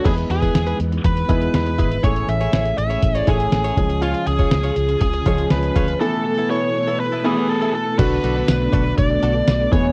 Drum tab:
CC |x---------------|----------------|----------------|----------------|
HH |xxxxxxxxxxxxxxxx|xxxxxxxxxxxxxxxx|xxxxxxxxxxxxxxxx|----------------|
TB |----------------|----------------|----------------|----------------|
SD |----o-------o---|----o-------o---|----o-------o---|----------------|
BD |o--o----o-o---o-|o-------o-o---o-|---o----o-o---o-|----------------|

CC |x---------------|
HH |x-x-x-x-x-x-x-x-|
TB |----x-------x---|
SD |----o-------o---|
BD |o-----o-o-----o-|